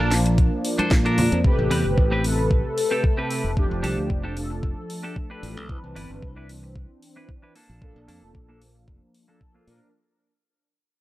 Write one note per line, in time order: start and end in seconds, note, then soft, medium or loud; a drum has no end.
0.00 0.48 A#1 medium
0.00 0.11 D4 medium
0.00 0.12 A4 medium
0.00 0.12 A#4 medium
0.11 1.41 F3 medium
0.11 1.41 A#3 medium
0.11 1.42 D4 medium
0.11 snare medium
0.11 open hi-hat loud
0.26 muted clean electric guitar stroke soft
0.26 closed hi-hat soft
0.38 kick loud
0.38 closed hi-hat medium
0.65 open hi-hat loud
0.78 0.91 D4 loud
0.78 0.91 A4 loud
0.78 0.92 C5 loud
0.78 muted fingered electric bass stroke soft
0.78 closed hi-hat soft
0.78 high conga medium
0.91 1.28 A#2 medium
0.91 kick loud
0.91 snare loud
0.91 closed hi-hat medium
1.05 1.38 D4 medium
1.05 1.38 A4 medium
1.05 1.39 A#4 loud
1.05 closed hi-hat soft
1.18 open hi-hat loud
1.18 high conga medium
1.18 low conga medium
1.32 1.42 F2 medium
1.32 closed hi-hat soft
1.44 2.21 C3 medium
1.44 2.21 A3 medium
1.44 2.22 G4 loud
1.44 2.21 B4 medium
1.44 muted fingered electric bass stroke soft
1.44 kick loud
1.59 1.69 A1 medium
1.71 1.82 E2 medium
1.71 1.85 C4 loud
1.71 1.85 G4 loud
1.71 1.85 B4 loud
1.71 open hi-hat loud
1.85 1.95 G1 medium
1.97 2.61 A1 medium
1.97 muted clean electric guitar stroke soft
1.97 kick loud
2.11 2.24 C4 medium
2.11 2.24 G4 medium
2.11 2.24 B4 medium
2.24 3.54 C3 medium
2.24 3.54 A3 medium
2.24 3.55 A4 medium
2.24 3.54 B4 medium
2.24 open hi-hat loud
2.38 muted clean electric guitar stroke soft
2.51 kick loud
2.78 open hi-hat loud
2.91 3.03 C4 loud
2.91 3.04 G4 loud
2.91 3.04 A4 loud
3.04 kick loud
3.17 3.50 C4 medium
3.17 3.51 G4 medium
3.17 3.51 B4 loud
3.31 open hi-hat medium
3.44 3.66 F1 medium
3.56 4.33 F3 medium
3.56 4.34 A3 medium
3.56 4.34 D4 medium
3.56 4.34 G4 loud
3.56 kick loud
3.71 3.81 F1 medium
3.83 3.95 C2 medium
3.83 3.97 D4 loud
3.83 3.98 G4 loud
3.83 3.98 A4 loud
3.83 open hi-hat medium
3.98 4.08 D2 medium
4.10 4.73 F1 medium
4.10 muted clean electric guitar stroke soft
4.10 kick loud
4.23 4.36 D4 medium
4.23 4.36 G4 medium
4.23 4.37 A4 medium
4.36 5.66 F3 medium
4.36 5.66 A3 medium
4.36 5.66 D4 medium
4.36 5.67 A4 medium
4.36 open hi-hat medium
4.50 muted clean electric guitar stroke soft
4.63 kick loud
4.90 open hi-hat loud
5.03 5.16 D4 loud
5.03 5.16 G4 loud
5.03 5.16 A4 loud
5.16 kick loud
5.30 5.63 D4 medium
5.30 5.63 G4 medium
5.30 5.63 B4 medium
5.43 5.57 A1 medium
5.43 open hi-hat medium
5.57 5.78 C2 medium
5.69 6.46 E3 medium
5.69 6.46 C4 medium
5.69 6.46 D4 medium
5.69 6.46 B4 loud
5.69 kick loud
5.84 5.94 C2 medium
5.95 6.07 G1 medium
5.95 6.10 D4 loud
5.95 6.10 E4 medium
5.95 6.10 B4 loud
5.95 open hi-hat medium
6.10 6.20 G1 medium
6.22 6.85 C2 medium
6.22 muted clean electric guitar stroke soft
6.22 kick loud
6.36 6.49 D4 medium
6.36 6.49 E4 medium
6.36 6.49 B4 medium
6.48 7.53 E3 medium
6.48 7.54 C4 medium
6.48 7.54 D4 medium
6.48 open hi-hat medium
6.63 muted clean electric guitar stroke soft
6.76 kick loud
7.02 open hi-hat medium
7.16 7.28 D4 loud
7.16 7.29 E4 loud
7.16 7.29 B4 loud
7.29 kick loud
7.42 7.54 D4 medium
7.42 7.55 E4 medium
7.42 7.55 B4 loud
7.55 7.98 A#3 medium
7.55 7.98 D4 medium
7.55 7.99 A4 loud
7.55 open hi-hat medium
7.69 7.91 A#1 medium
7.81 8.58 F3 medium
7.81 8.58 A#3 medium
7.81 8.59 D4 medium
7.81 8.59 A4 loud
7.81 kick loud
7.96 8.06 A#1 medium
8.08 8.20 F2 medium
8.08 8.22 A#3 loud
8.08 8.22 D4 medium
8.08 8.23 A4 loud
8.08 open hi-hat medium
8.22 8.32 F1 medium
8.34 8.87 A#1 medium
8.34 muted clean electric guitar stroke soft
8.34 kick loud
8.48 8.61 A#3 medium
8.48 8.61 D4 medium
8.48 8.62 A4 medium
8.60 9.25 F3 medium
8.60 9.25 A#3 medium
8.60 9.26 D4 medium
8.60 open hi-hat medium
8.75 muted clean electric guitar stroke soft
8.88 8.99 F1 medium
8.88 kick loud
9.14 open hi-hat medium
9.28 9.64 F3 medium
9.28 9.41 A#3 loud
9.28 9.64 A#3 medium
9.28 9.41 D4 loud
9.28 9.65 D4 medium
9.28 9.65 A4 medium
9.28 9.41 A4 loud
9.41 kick medium
9.54 9.87 A#3 medium
9.54 9.88 D4 medium
9.54 9.88 F4 medium
9.67 9.79 A#2 medium
9.67 9.91 F3 medium
9.67 9.91 A#3 medium
9.67 9.91 D4 medium
9.67 9.91 A#4 medium
9.67 open hi-hat medium